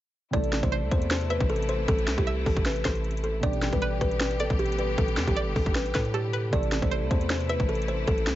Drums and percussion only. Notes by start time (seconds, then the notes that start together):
0.33 kick, closed hi-hat
0.44 closed hi-hat
0.53 snare, closed hi-hat
0.63 kick, closed hi-hat
0.72 closed hi-hat
0.91 kick, closed hi-hat
1.02 closed hi-hat
1.11 snare, closed hi-hat
1.21 closed hi-hat
1.30 closed hi-hat
1.40 kick, closed hi-hat
1.50 closed hi-hat
1.56 closed hi-hat
1.62 closed hi-hat
1.69 closed hi-hat
1.88 kick, closed hi-hat
1.99 closed hi-hat
2.08 snare, closed hi-hat
2.18 kick, closed hi-hat
2.27 closed hi-hat
2.46 kick, open hi-hat
2.56 kick, closed hi-hat
2.66 snare, closed hi-hat
2.76 closed hi-hat
2.85 kick, snare, closed hi-hat
2.95 closed hi-hat
3.04 closed hi-hat
3.11 closed hi-hat
3.17 closed hi-hat
3.24 closed hi-hat
3.43 kick, closed hi-hat
3.53 closed hi-hat
3.62 snare, closed hi-hat
3.73 kick, closed hi-hat
3.82 closed hi-hat
4.01 kick, closed hi-hat
4.11 closed hi-hat
4.20 snare, closed hi-hat
4.31 closed hi-hat
4.40 closed hi-hat
4.50 kick, closed hi-hat
4.59 closed hi-hat
4.66 closed hi-hat
4.72 closed hi-hat
4.79 closed hi-hat
4.98 kick, closed hi-hat
5.08 closed hi-hat
5.17 snare, closed hi-hat
5.27 kick, closed hi-hat
5.37 closed hi-hat
5.56 kick, open hi-hat
5.66 kick, closed hi-hat
5.75 snare, closed hi-hat
5.86 closed hi-hat
5.95 kick, snare, closed hi-hat
6.05 closed hi-hat
6.14 closed hi-hat
6.33 closed hi-hat
6.53 kick, closed hi-hat
6.63 closed hi-hat
6.72 snare, closed hi-hat
6.82 kick, closed hi-hat
6.91 closed hi-hat
7.11 kick, closed hi-hat
7.21 closed hi-hat
7.30 snare, closed hi-hat
7.40 closed hi-hat
7.49 closed hi-hat
7.60 kick, closed hi-hat
7.69 closed hi-hat
7.75 closed hi-hat
7.82 closed hi-hat
7.88 closed hi-hat
8.08 kick, closed hi-hat
8.18 closed hi-hat
8.27 snare, closed hi-hat